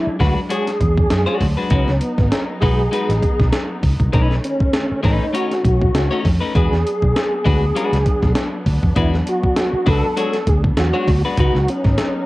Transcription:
Already playing: string section F#3 G#3 D4, tonewheel organ E4
0.07 muted fingered electric bass stroke
0.20 fingered electric bass D2, clean electric guitar G#3 D4 F#4 B4, tonewheel organ F#4, kick, snare, open hi-hat
0.50 clean electric guitar G#3 D4 F#4 C#5, tonewheel organ G#4, closed hi-hat
0.67 snare, closed hi-hat
0.81 fingered electric bass E2, kick, closed hi-hat
0.98 kick
1.10 fingered electric bass F#2, snare, closed hi-hat
1.26 clean electric guitar G#3 D4 F#4 C#5
1.41 fingered electric bass D2, kick, snare, open hi-hat
1.57 clean electric guitar G#3 D4 F#4 B4
1.70 fingered electric bass C#2, clean electric guitar G#3 D#4 F#4 B4, string section B3 D#4, tonewheel organ C#4, kick, closed hi-hat
1.88 fingered electric bass C#2, snare
2.01 tonewheel organ B3, closed hi-hat
2.18 fingered electric bass G#1, kick, snare
2.31 tonewheel organ C#4, snare, closed hi-hat
2.61 fingered electric bass B1, clean electric guitar G#3 D#4 F#4 B4, tonewheel organ G#4, kick, open hi-hat
2.92 clean electric guitar G#3 D#4 F#4 B4, closed hi-hat
3.09 fingered electric bass A1, snare, closed hi-hat
3.23 kick, closed hi-hat
3.40 fingered electric bass B1, kick, snare
3.53 snare, closed hi-hat
3.83 fingered electric bass C#2, kick, open hi-hat
4.00 fingered electric bass C2, kick, closed hi-hat
4.13 fingered electric bass B1, string section D#3 A3 C#4, clean electric guitar A3 C#4 D#4 B4, tonewheel organ D#4, kick, closed hi-hat
4.31 snare
4.44 tonewheel organ C#4, closed hi-hat
4.60 muted fingered electric bass stroke, kick
4.73 snare, closed hi-hat
4.91 muted fingered electric bass stroke
5.03 fingered electric bass A1, clean electric guitar A3 C#4 D#4 B4, tonewheel organ D#4, kick, snare, open hi-hat
5.33 clean electric guitar A3 C#4 D#4 C#5, tonewheel organ F#4, closed hi-hat
5.51 snare, closed hi-hat
5.64 fingered electric bass B1, kick, closed hi-hat
5.81 kick
5.94 fingered electric bass C#2, snare, closed hi-hat
6.11 clean electric guitar A3 C#4 D#4 C#5
6.25 fingered electric bass F2, kick, snare, open hi-hat
6.40 clean electric guitar A3 C#4 D#4 B4
6.55 fingered electric bass E2, string section F#3 B3 D4, clean electric guitar G#3 D4 F#4 B4, tonewheel organ G#4, kick, closed hi-hat
6.72 fingered electric bass E2, snare
6.87 closed hi-hat
7.02 fingered electric bass B1, kick
7.16 snare, closed hi-hat
7.45 fingered electric bass D2, clean electric guitar G#3 D4 F#4 B4, tonewheel organ G#4, kick, open hi-hat
7.76 clean electric guitar G#3 D4 F#4 B4, closed hi-hat
7.93 fingered electric bass C#2, snare, closed hi-hat
8.06 kick, closed hi-hat
8.22 fingered electric bass B1, kick, snare
8.35 snare, closed hi-hat
8.66 fingered electric bass D2, kick, open hi-hat
8.83 fingered electric bass F2, kick
8.96 fingered electric bass E2, clean electric guitar G#3 D4 F#4 B4, tonewheel organ E4, kick, closed hi-hat
9.14 snare
9.27 tonewheel organ F#4, closed hi-hat
9.43 muted fingered electric bass stroke, kick
9.56 snare, closed hi-hat
9.73 muted fingered electric bass stroke
9.86 fingered electric bass C#2, clean electric guitar G#3 D4 F#4 B4, tonewheel organ A4, kick, snare, open hi-hat
10.17 clean electric guitar G#3 D4 F#4 C#5, closed hi-hat
10.33 snare, closed hi-hat
10.47 fingered electric bass D2, tonewheel organ G#4, kick, closed hi-hat
10.64 kick
10.77 fingered electric bass E2, tonewheel organ F#4, snare, closed hi-hat
10.94 clean electric guitar G#3 D4 F#4 C#5
11.08 fingered electric bass D2, kick, snare, open hi-hat
11.25 clean electric guitar G#3 D4 F#4 B4
11.38 fingered electric bass C#2, clean electric guitar G#3 D#4 F#4 B4, string section B3 D#4, tonewheel organ F#4, kick, closed hi-hat
11.55 fingered electric bass C#2, snare
11.68 tonewheel organ C#4, closed hi-hat
11.84 fingered electric bass G#1, kick, snare
11.98 snare, closed hi-hat

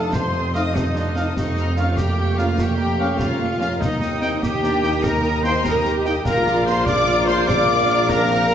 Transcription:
Already playing: tuba F1, double bass section F2, viola section D4, oboe A4, cello section A4, violin section A5 D#6, flute section A5
0.12 viola section C4, cello section C5, oboe C5, violin section F5 C6, flute section C6, concert bass drum, snare
0.34 violin section A5 D#6
0.54 french horn section A3 D#4, cello section D#5, oboe D#5, trumpet F5, violin section F5 C6 D#6, flute section D#6, snare
0.73 viola section C4, oboe D#4, cello section D#4, violin section D#5 A5 D#6, flute section D#5, concert bass drum, snare
0.95 viola section D4, violin section F5 C6, snare
1.15 french horn section A3 D#4, viola section C4, trumpet F5, violin section A5 D#6, snare
1.36 tuba F1, double bass section F2, oboe D#4, cello section D#4, flute section D#5, violin section D#5 F5 C#6, concert bass drum, snare
1.57 violin section A#5 F6, snare
1.76 french horn section A#3 C#4, oboe F4, cello section F4, flute section F5, trumpet F5, violin section F5 C#6, snare
1.95 viola section A#3, oboe G4, cello section G4, flute section G5, violin section G5 A#5 F6, concert bass drum, snare
2.19 violin section F5 C#6
2.37 french horn section A#3 C#4, cello section F4, oboe F4, flute section F5, trumpet F5, violin section F5 A#5 F6, snare
2.58 cello section G4, oboe G4, violin section F5 G5 C#6, flute section G5, concert bass drum, snare
2.78 violin section A#5 F6
2.98 french horn section A#3 C#4, violin section F5 C#6, trumpet F5
3.18 viola section C#4, cello section F4, oboe F4, violin section F5 A#5 F6, flute section F5, concert bass drum, snare
3.40 viola section A#3, violin section F5 C#6
3.59 french horn section A#3 C#4, viola section C#4, trumpet F5, violin section A#5 F6, snare
3.79 tuba D#2, double bass section D#2, viola section C4, cello section D#4, oboe D#4, flute section D#5, violin section D#5 A#5, concert bass drum, snare
4.01 viola section A#3, violin section G5 D#6, snare
4.21 french horn section A#3 D#4, viola section C4, violin section D#5 A#5, trumpet G5, snare
4.41 viola section A#3, cello section G4, oboe G4, violin section G5 D#6, flute section G5, concert bass drum, snare
4.63 viola section D4, violin section D#5 A#5, snare
4.82 french horn section A#3 D#4, viola section D#4, trumpet G5, violin section G5 D#6, snare
5.03 oboe A#4, cello section A#4, violin section D#5 A#5, flute section A#5, concert bass drum, snare
5.24 violin section G5 D#6
5.43 french horn section A#3 D#4, oboe C5, cello section C5, violin section D#5 A#5 C6, trumpet G5, flute section C6, snare
5.64 viola section G4, oboe A#4, cello section A#4, violin section G5 A#5 D#6, flute section A#5, concert bass drum, snare
5.85 violin section D#5 A#5, snare
6.05 french horn section A#3 D#4, trumpet G5, violin section G5 D#6, snare
6.25 tuba A#1, double bass section A#1, french horn section A#3 D4, viola section F4, cello section A#4, oboe A#4, trumpet F5, violin section F5 A#5, flute section A#5, concert bass drum, snare, crash
6.47 violin section D5 D6, snare
6.65 oboe C5, cello section C5, violin section F5 A#5 C6, flute section C6, snare
6.86 french horn section A#3 D4, oboe D5, cello section D5, violin section D5 D6, trumpet F5, flute section D6, concert bass drum, snare
7.08 violin section F5 A#5
7.27 oboe C5, cello section C5, violin section D5 C6 D6, flute section C6, snare
7.46 french horn section A#3 D4, oboe D5, cello section D5, violin section F5 A#5 D6, trumpet F5, flute section D6, concert bass drum, snare
7.67 violin section D5 D6
7.89 violin section F5 A#5
8.08 french horn section A#3 D4, viola section D4, cello section A#4, oboe A#4, violin section D5 A#5 D6, trumpet F5, flute section A#5, concert bass drum, snare
8.28 viola section C4, violin section A#5
8.32 violin section F5
8.49 viola section D4, snare

